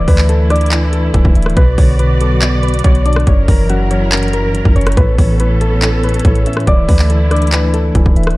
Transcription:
Already playing: D3 E3 A3 E4 A4 D5 E5
0.08 D2 A3 B4, kick, open hi-hat
0.18 clap
0.29 E3 A4, closed hi-hat
0.50 D4 D5, cross-stick, closed hi-hat
0.56 closed hi-hat
0.61 closed hi-hat
0.66 closed hi-hat
0.72 E3 B4, clap, closed hi-hat
0.93 A4, closed hi-hat
1.14 D1 E3, kick, closed hi-hat
1.25 D1, kick
1.35 D1 E5, closed hi-hat
1.42 cross-stick, closed hi-hat
1.50 closed hi-hat
1.57 B1 B2 B3 F#4 B4 D5, kick, closed hi-hat
1.78 B1 D3 C#5, kick, open hi-hat
1.99 B2 B4, closed hi-hat
2.21 F#3 A4, closed hi-hat
2.42 B2, clap, closed hi-hat
2.63 B4, closed hi-hat
2.68 closed hi-hat
2.74 closed hi-hat
2.79 closed hi-hat
2.84 B1 B2 C#5, kick, closed hi-hat
2.95 closed hi-hat
3.05 D4 D5, closed hi-hat
3.13 cross-stick, closed hi-hat
3.20 closed hi-hat
3.27 F#1 F#2 F#3 E4 A#4 C#5, kick, closed hi-hat
3.48 F#1 E3 A#4, kick, open hi-hat
3.69 F#2 F#4, closed hi-hat
3.91 F#3 C#5, closed hi-hat
4.12 F#2 A#4, clap, closed hi-hat
4.17 closed hi-hat
4.23 closed hi-hat
4.28 closed hi-hat
4.33 A#4, closed hi-hat
4.54 F#2, closed hi-hat
4.65 F#1, kick
4.76 F#1 C#4 C#5, closed hi-hat
4.81 closed hi-hat
4.87 cross-stick, closed hi-hat
4.92 closed hi-hat
4.97 A1 A2 B3 C#4 A4 B4, kick, closed hi-hat
5.18 A1 E3 C#5, kick, open hi-hat
5.40 A2 B4, closed hi-hat
5.61 A3 A4, closed hi-hat
5.82 A2, clap, closed hi-hat
6.03 B4, closed hi-hat
6.09 closed hi-hat
6.14 closed hi-hat
6.19 closed hi-hat
6.25 A1 A2 C#5, kick, closed hi-hat
6.35 closed hi-hat
6.46 C#4 E5, closed hi-hat
6.53 cross-stick, closed hi-hat
6.60 closed hi-hat
6.67 D1 D3 E3 A3 E4 D5, kick, closed hi-hat
6.89 D2 A3 B4, kick, open hi-hat
6.99 clap
7.10 E3 A4, closed hi-hat
7.31 D4 D5, cross-stick, closed hi-hat
7.36 closed hi-hat
7.42 closed hi-hat
7.47 closed hi-hat
7.52 E3 B4, clap, closed hi-hat
7.74 A4, closed hi-hat
7.95 D1 E3, kick, closed hi-hat
8.06 D1, kick
8.16 D1 E5, closed hi-hat
8.23 cross-stick, closed hi-hat
8.30 closed hi-hat

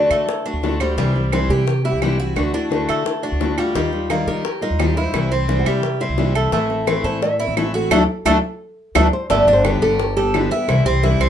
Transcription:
Already playing: D3 A3 D4 F#4 D5
0.10 D3 A3, high bongo, claves
0.28 muted steel-string acoustic guitar stroke, high bongo
0.46 A3 D4 F#4, high bongo
0.53 D2
0.63 D3 A3 D4 F#4, high bongo, low bongo
0.80 G3 A3 D4 F#4 C5, claves
0.97 C2 C3 E3 G3 C4 E4, high bongo
1.15 G3 C4 E4, high bongo
1.32 C3 E3 G3 C4 E4, high bongo, claves
1.49 C3 G4, high bongo
1.67 muted steel-string acoustic guitar stroke, high bongo
1.84 G3 C4 E4 G4, high bongo
1.93 C2
2.01 C3 E3 G3 C4 E4 G4, high bongo, low bongo, claves
2.19 G3 C4 E4 F#4
2.36 D2 D3 A3 D4 F#4, high bongo, claves
2.53 A3 D4 E4 F#4, high bongo
2.70 D3 A3 D4 F#4, high bongo
2.88 D3 A3, high bongo, claves
3.05 muted steel-string acoustic guitar stroke, high bongo
3.23 A3 D4 F#4, high bongo
3.32 D2
3.40 D3 A3 D4 F#4, high bongo, low bongo
3.58 G3 A3 D4 F4 F#4, claves
3.74 D#2 D#3 G3 D#4 F4, high bongo
3.92 G3 D#4 F4, high bongo
4.10 D#3 G3 A#3 D#4 F4, high bongo, claves
4.27 D#3 G4 A#4, high bongo
4.44 muted steel-string acoustic guitar stroke, high bongo
4.61 G3 D#4 F4 A#4, high bongo
4.70 D#2
4.79 D#3 G3 D#4 F4 G4, high bongo, low bongo, claves
4.96 G3 D#4 E4 F4 C5
5.13 C2 C3 E3 G3 C4 E4, high bongo, claves
5.31 G3 C4 E4, high bongo
5.48 C3 E3 G3 C4 E4, high bongo
5.59 F#5
5.66 C3 G3 E5, high bongo, claves
5.83 muted steel-string acoustic guitar stroke, high bongo
6.00 G3 C4 E4 E5, high bongo
6.09 C2
6.17 C3 E3 G3 C4 E4, high bongo, low bongo
6.35 G3 A3 C4 E4 A4, claves
6.52 A1 E3 A3 C4 E4, high bongo
6.69 A3 C4 E4, high bongo
6.87 E3 A3 C4 E4, high bongo, claves
7.04 A2 A4 C5, high bongo
7.22 E5, muted steel-string acoustic guitar stroke, high bongo
7.39 A3 C4 E4, high bongo
7.47 A1
7.57 E3 A3 C4 E4 A4, high bongo, low bongo, claves
7.74 A3 C4 E4 F#4 A4
7.91 D2 F#3 A3 D4, low bongo, claves
8.25 D2 F#3 A3 D4, low bongo, claves
8.95 D2 F#3 A3 D4 B4, low bongo, claves
9.13 C5
9.30 G1 D3 G3 A3 B3 G4 D5, high bongo
9.47 G1 G3 B3 D4 G4
9.53 C5
9.64 D3 G3 B3 G4 B4, high bongo, claves
9.82 G1 G4 A4, high bongo
9.99 muted steel-string acoustic guitar stroke, high bongo
10.16 G3 B3 G4 A4, high bongo
10.34 D3 G3 B3 G4, high bongo, low bongo, claves
10.51 G3 B3 E4 G4 B4, high bongo
10.68 C2 C3 E3 G3 C4 E4 C5, high bongo, claves
10.85 C2 G3 C4 E4 G4
11.03 C3 E3 G3 C4 E4, high bongo
11.20 C2 C4, high bongo, claves

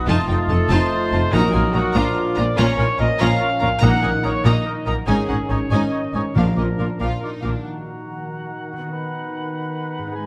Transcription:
Already playing: B2 F#3 B3 F#4 D#5 D#6
0.06 F1 F2 A3 D#4 F4 A5
0.28 F1 F2 A3 D#4 G5
0.48 F1 F2 D#4 F4 A4 A5
0.69 F1 F2 A3 D#4 F4 C5 D#5 A5
0.91 F4
1.11 F1 F2 C3 D#4 F4 A5
1.32 A#1 A#2 F#3 D#4 F#4 A#4 A#5 D#6
1.36 F#4
1.52 A#1 A#2 A#3 D#4 F4 G#5
1.73 A#1 A#2 D#4 F#4 D#5 A#5
1.93 A#1 A#2 F3 D4 F4 A#5
1.97 D6
2.16 A#3
2.35 A#1 A#2 D4 F4 D5 A#5
2.57 A#1 A#2 F3 C#4 F4 A#4 C#5 A#5 C#6
2.77 A#1 A#2 A#3 C#4 D#4 F4 A#4 G#5 C#6
2.97 A#1 A#2 C#4 F4 A#4 D#5 A#5 C#6
3.19 A#1 A#2 F3 C#4 F4 A#4 C#5 F5 A#5 C#6
3.40 F4 A#4 C#6
3.60 A#1 A#2 F3 C#4 F4 A#4 A#5 C#6
3.80 A#1 A#2 D#3 A#3 D#4 A#4 F#5 A#5 D#6
4.02 A#1 A#2 A#3 C#4 D#4 A#4 G#5 D#6
4.23 A#1 A#2 A#3 D#4 A#4 C#5 A#5 D#6
4.43 A#1 A#2 D#3 A#3 D#4 A#4 D#5 A#5 D#6
4.65 D#4 A#4 D#6
4.85 A#1 A#2 F#3 A#3 D#4 A#4 A#5 D#6
5.07 G#1 G#2 D#3 C#4 D#4 G#4 C#5 G#5 D#6
5.28 G#1 G#2 C#4 D#4 C#5 F#5 D#6
5.49 G#1 G#2 C#4 D#4 C#5 G#5 D#6
5.70 G#1 G#2 D#3 C#4 D#4 C#5 D#5 G#5 D#6
5.91 D#4 C#5 D#6
6.14 G#1 G#2 D#3 C#4 D#4 C#5 G#5 D#6
6.35 A#1 A#2 F3 D4 F4 A#4 F5 D6
6.56 A#1 A#2 F3 A#3 B3 F4 A#4 D#5 D6
6.78 A#1 A#2 F3 D4 F4 A#4 F5 D6
6.99 A#1 A#2 F3 F4 A#4 F5 D6
7.20 D4 A#4 D6
7.24 D#4 F4
7.41 A#1 A#2 F3 A#4 F5 D6
7.46 D#3 D4 F4
7.51 A#3
7.55 D#4
7.60 F#4 F#5
7.64 D#3 D#4 F#4 A#5
8.73 D#3
8.77 B3
8.81 D#4
8.86 F#4
8.91 B4 B5
9.98 G#2
10.03 B3
10.07 D#4
10.12 G#4 G#5
10.17 G#3 D#4

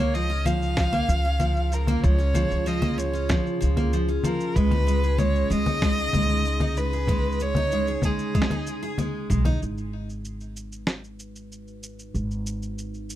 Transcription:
Already playing: C#2 C#3 D#4 C#5
0.00 A#3
0.15 F3 D#5, shaker
0.28 C#4, shaker
0.46 F3 F5, low conga, shaker
0.62 shaker
0.77 F3, kick, snare, shaker
0.93 A#3, low conga, shaker
1.09 C#2 F3, shaker
1.25 C#4 F4
1.40 F3, low conga, shaker
1.56 shaker
1.67 G#4
1.72 F3 A#4, shaker
1.87 A#3, low conga, shaker
2.04 C#2 F3 C#5, kick, shaker
2.18 C#4, shaker
2.34 F3, low conga, shaker
2.51 C#2, shaker
2.66 F3 D#5, shaker
2.82 A#3, low conga, shaker
2.98 F3 C#5, shaker
3.13 C#4, shaker
3.29 F3, kick, snare, low conga, shaker
3.46 shaker
3.60 C#2 F3, shaker
3.77 A#3, low conga, shaker
3.93 F3, shaker
4.08 C#4, shaker
4.23 F3 A#4, low conga, shaker
4.40 shaker
4.55 C#2 G#3 B4, kick, shaker
4.71 D#4, low conga, shaker
4.87 G#3, shaker
5.03 G#4, shaker
5.18 G#3 C#5, low conga, shaker
5.36 shaker
5.50 C#2 G#3 D#4 D#5, shaker
5.66 D#4, low conga, shaker
5.82 G#3, kick, snare, shaker
5.98 G#4, shaker
6.13 C#2 G#3, low conga, shaker
6.17 low conga
6.22 low conga
6.26 low conga
6.30 low conga, shaker
6.33 low conga
6.37 low conga
6.41 G#3, low conga
6.46 shaker
6.60 D#4, low conga, shaker
6.77 G#3 B4, shaker
6.93 G#4, shaker
7.07 G#3, kick, low conga, shaker
7.32 shaker
7.40 G#3 C#5, shaker
7.55 D#4, low conga, shaker
7.71 G#3, shaker
7.87 G#4, shaker
8.02 G#3 G#4, kick, low conga, shaker
8.19 shaker
8.35 G#3, kick, shaker
8.42 snare
8.50 D#4, low conga, shaker
8.67 G#3, shaker
8.83 G#4, shaker
8.98 G#3, low conga, shaker
9.30 B1 G#3, kick, shaker
9.45 D#4, low conga, shaker
9.61 G#1 G#3, shaker
9.78 shaker
10.09 B4, shaker
10.25 shaker
10.40 shaker
10.56 shaker
10.72 shaker
10.86 F#4, snare, shaker
11.04 shaker
11.19 shaker
11.36 shaker
11.52 shaker
11.68 shaker
11.83 shaker
11.99 shaker
12.14 G#1, shaker
12.31 shaker
12.46 shaker
12.62 shaker
12.78 shaker
12.94 shaker
13.10 shaker

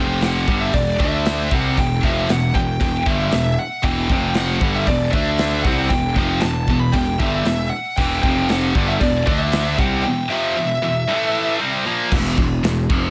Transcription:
Already playing: F1 F2 C3 F3 G5
0.21 F#5, snare, open hi-hat
0.47 G1 G2 D3 G3, kick
0.60 E5
0.72 E1 E2 B2 D5, kick, open hi-hat
0.98 D2 D3 A3 D4 E5, kick
1.25 snare, open hi-hat
1.50 C2 C3 G3 C4 F#5, kick
1.76 E1 E2 B2 G5, kick, open hi-hat
2.03 F1 F2 C3 F3 E5, kick
2.29 E1 E2 B2 F#5, snare, open hi-hat
2.55 E1 E2 B2 G5, kick
2.81 E1 E2 B2, kick, open hi-hat
3.06 G1 G2 D3 G3 E5, kick
3.31 E1 E2 B2, snare, open hi-hat
3.59 F#5
3.83 E1 E2 B2 E3 G5, kick, open hi-hat
4.09 F1 F2 C3 F3 G5, kick
4.34 F#5, snare, open hi-hat
4.61 G1 G2 D3 G3, kick
4.76 E5
4.87 E1 E2 B2 D5, kick, open hi-hat
5.12 D2 D3 A3 D4 E5, kick
5.38 snare, open hi-hat
5.63 C2 C3 G3 C4 F#5, kick
5.89 E1 E2 B2 G5, kick, open hi-hat
6.16 F1 F2 C3 F3 G5, kick
6.41 E1 E2 B2 A5, snare, open hi-hat
6.68 E1 E2 B2, kick
6.80 B5
6.92 E1 E2 B2 G5, kick, open hi-hat
7.19 G1 G2 D3 G3 E5, kick
7.45 E1 E2 B2, snare, open hi-hat
7.70 F#5
7.97 E1 E2 B2 E3 G5, kick, open hi-hat
8.22 F1 F2 C3 F3 G5, kick
8.49 F#5, snare, open hi-hat
8.75 G1 G2 D3 G3, kick
8.88 E5
9.01 E1 E2 B2 D5, kick, open hi-hat
9.26 D2 D3 A3 D4 E5, kick
9.52 snare, open hi-hat
9.78 C2 C3 G3 C4 F#5, kick
10.03 E2 B2 G5
10.30 F2 C3 F3 E5
10.57 E2 B2
10.83 E2 B2
11.09 A2 E3 A3
11.60 C3 G3 C4
11.85 A#2 F3 A#3
12.11 E1 E2 B2 E3, kick, crash
12.37 E1 E2 B2, kick
12.63 E1 E2 B2, snare, crash
12.90 F1 F2 C3 F3, kick

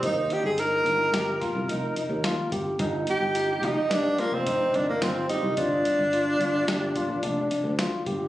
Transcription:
0.03 D#2 D#4, kick, closed hi-hat
0.30 G4, closed hi-hat
0.44 G1 G#4
0.58 D#4 A#4, closed hi-hat
0.85 G1 D#4, closed hi-hat
1.13 G1 G4, snare, closed hi-hat
1.41 F4, kick, snare, closed hi-hat
1.55 C2
1.68 F1 D#4, closed hi-hat
1.96 D#4, closed hi-hat
2.10 D#2
2.24 F4, snare, closed hi-hat
2.52 G1 G4, kick, closed hi-hat
2.79 G1 D#4, kick, closed hi-hat
3.07 G4, closed hi-hat
3.21 G1
3.35 D#4, closed hi-hat
3.62 F1 D#4, closed hi-hat
3.90 G2 D4 G4, snare, closed hi-hat
4.18 A#3 F4, snare, closed hi-hat
4.32 F1 C4
4.47 D#4, kick, closed hi-hat
4.73 G1 D4 D#4, closed hi-hat
4.89 A#3
5.01 G1 C4 F4, snare, closed hi-hat
5.29 D#4 G4, closed hi-hat
5.43 C2
5.57 G1 D4 F4, kick, closed hi-hat
5.85 closed hi-hat
5.99 G1
6.13 F4, closed hi-hat
6.39 G1 F4, closed hi-hat
6.68 G1 G4, snare, closed hi-hat
6.96 F4, kick, closed hi-hat
7.09 A#1
7.23 F1 D4, closed hi-hat
7.51 D4, closed hi-hat
7.64 D2
7.79 F4, snare, closed hi-hat
8.06 G1 G4, kick, closed hi-hat

